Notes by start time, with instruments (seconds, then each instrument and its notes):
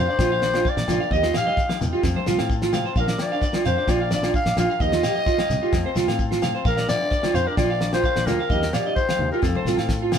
Already playing: transistor combo organ D4 F4 A#4
0.00 clarinet C5
0.07 nylon-string guitar A#3 D4 F4, clean electric guitar D5, shekere
0.19 fingered electric bass A#1, clean electric guitar F4, kick, snare, high conga, low agogo, shekere
0.32 clean electric guitar F5
0.41 nylon-string guitar F3 A#3 D4 F4, clean electric guitar D5, snare
0.54 nylon-string guitar A#3 D4 F4, clean electric guitar F4, snare, low agogo, shekere
0.65 clarinet D5, clean electric guitar F5, kick, shekere
0.77 fingered electric bass A#1, clean electric guitar D5, snare
0.88 fingered electric bass A#1, nylon-string guitar F3 A#3 D4 F4, clean electric guitar F4, snare, high conga, low conga, low agogo, shekere
1.00 clean electric guitar F5, shekere
1.11 fingered electric bass D#2, nylon-string guitar F3 A#3 D#4 G4, transistor combo organ D#4 G4, clean electric guitar D#5, clarinet D#5, kick, shekere
1.23 clean electric guitar F4, snare
1.34 nylon-string guitar F3 A#3 D#4 G4, clean electric guitar F5, clarinet F5, snare, low agogo, shekere
1.46 nylon-string guitar A#3 D#4, clean electric guitar D#5, high conga, shekere
1.57 kick, snare, shekere
1.69 clean electric guitar F5, snare, high conga, low agogo
1.81 fingered electric bass E2, snare, low conga, shekere
1.93 nylon-string guitar A#3 D#4 G4, clean electric guitar F4, shekere
2.03 fingered electric bass F2, nylon-string guitar F3 A3 F4, transistor combo organ C4 F4 A4, muted nylon-string guitar stroke, kick, snare, high conga, low agogo, shekere
2.16 clean electric guitar C5, high conga
2.26 fingered electric bass C2, nylon-string guitar F3 A3 C4 F4, clean electric guitar F4, snare, shekere
2.38 fingered electric bass A2, nylon-string guitar A3 C4 F4, clean electric guitar F5, snare, low agogo, shekere
2.50 kick, shekere
2.62 clean electric guitar F4, snare
2.73 nylon-string guitar F3 A3 C4 F4, clean electric guitar F5, snare, high conga, low conga, low agogo, shekere
2.85 clean electric guitar C5, shekere
2.96 fingered electric bass A#1, nylon-string guitar F3 A#3 D4 F4, transistor combo organ D4 A#4, clean electric guitar F5, kick, shekere
3.00 clarinet A#4
3.08 clean electric guitar D5, snare
3.19 nylon-string guitar F3 A#3 D4 F4, clarinet D5, snare, low agogo
3.31 nylon-string guitar A#3 D4 F4, clean electric guitar F5, shekere
3.41 clean electric guitar D5, kick, snare, shekere
3.53 clean electric guitar F4, snare, high conga, low agogo
3.64 fingered electric bass F2, clarinet C5, clean electric guitar F5, snare, low conga, shekere
3.77 nylon-string guitar A#3 D4 F4, clean electric guitar D5, shekere
3.87 fingered electric bass A#1, clean electric guitar F4, clarinet D5, kick, snare, high conga, low agogo, shekere
4.01 clean electric guitar F5
4.11 nylon-string guitar A#3 D4 F4, clean electric guitar D5, clarinet D5, snare, shekere
4.23 nylon-string guitar A#3 D4 F4, clean electric guitar F4, snare, low agogo, shekere
4.34 clarinet F5, kick, shekere
4.46 fingered electric bass A#1, clean electric guitar D5, snare
4.57 fingered electric bass A#1, nylon-string guitar F3 A#3 D4 F4, clean electric guitar F4, clarinet F5, snare, high conga, low agogo, shekere
4.70 clean electric guitar F5, shekere
4.80 fingered electric bass D#2, nylon-string guitar F3 A#3 D#4 G4, transistor combo organ D#4 F4 G4, clean electric guitar D#5, clarinet D#5, kick, shekere
4.92 clean electric guitar F4, snare
5.03 nylon-string guitar F3 A#3 D#4 G4, clean electric guitar F5, snare, low agogo, shekere
5.16 nylon-string guitar A#3 D#4, clean electric guitar D#5, shekere
5.26 clean electric guitar F4, kick, snare, shekere
5.38 clean electric guitar F5, snare, high conga, low agogo
5.50 fingered electric bass C2, snare, low conga, shekere
5.62 nylon-string guitar A#3 D#4 G4, clean electric guitar F4, shekere
5.73 fingered electric bass F2, nylon-string guitar A3 C4 F4, transistor combo organ C4 F4 A4, kick, snare, high conga, low agogo, shekere
5.86 clean electric guitar C5
5.96 fingered electric bass C2, nylon-string guitar A3 C4, clean electric guitar F4, snare, shekere
6.00 nylon-string guitar F4
6.08 fingered electric bass A2, nylon-string guitar C4 F4, clean electric guitar F5, snare, low agogo
6.19 kick, shekere
6.31 clean electric guitar F4, snare
6.42 nylon-string guitar A3 C4 F4, clean electric guitar F5, snare, high conga, low conga, low agogo, shekere
6.55 clean electric guitar C5, shekere
6.65 fingered electric bass A#1, nylon-string guitar A#3 D4 F4, transistor combo organ D4 A#4, clarinet A#4, clean electric guitar F5, muted nylon-string guitar stroke, kick, shekere
6.77 clean electric guitar D5, snare
6.88 nylon-string guitar F3 A#3 D4 F4, clarinet D5, snare, low agogo, shekere
7.00 nylon-string guitar A#3 D4 F4
7.11 clean electric guitar D5, kick, snare, shekere
7.23 clean electric guitar F4, snare, high conga, low agogo
7.34 fingered electric bass F2, clarinet C5, clean electric guitar F5, snare, low conga, shekere
7.47 nylon-string guitar A#3 D4 F4, clarinet A#4, clean electric guitar D5
7.57 fingered electric bass A#1, clean electric guitar F4, clarinet D5, kick, snare, high conga, low agogo, shekere
7.70 clean electric guitar F5
7.80 nylon-string guitar F3 A#3 D4 F4, clean electric guitar D5, snare
7.92 nylon-string guitar A#3 D4 F4, clean electric guitar F4, clarinet C5, snare, low agogo, shekere
8.04 clean electric guitar F5, kick, shekere
8.16 fingered electric bass A#1, clean electric guitar D5, snare
8.26 fingered electric bass D2, nylon-string guitar F3 A#3 D4 F4, clean electric guitar F4, clarinet A#4, snare, high conga, low conga, low agogo, shekere
8.40 clean electric guitar F5, shekere
8.50 fingered electric bass D#2, nylon-string guitar F3 A#3 D#4 G4, transistor combo organ D#4 G4, clean electric guitar D#5, kick, shekere
8.62 muted clean electric guitar stroke, snare
8.73 nylon-string guitar F3 A#3 D#4 G4, clarinet D5, clean electric guitar F5, snare, low agogo, shekere
8.84 nylon-string guitar A#3 D#4 G4, clean electric guitar D#5, shekere
8.95 clarinet C5, kick, shekere
9.08 clean electric guitar F5, snare, high conga, low agogo
9.19 fingered electric bass D#2, low conga
9.31 nylon-string guitar A#3 D#4 G4, clean electric guitar F4, clarinet A#4, shekere
9.42 fingered electric bass F2, nylon-string guitar A3 C4 F4, transistor combo organ C4 A4, clarinet A4, kick, snare, high conga, low agogo, shekere
9.55 clean electric guitar C5, high conga, low conga
9.65 fingered electric bass C2, nylon-string guitar A3 C4 F4, clean electric guitar F4, snare, shekere
9.77 fingered electric bass A2, nylon-string guitar C4 F4, clean electric guitar F5, snare, low agogo, shekere
9.89 kick, snare, shekere
10.02 clean electric guitar F4
10.12 nylon-string guitar A3 C4 F4, clean electric guitar F5, snare, low conga, low agogo, shekere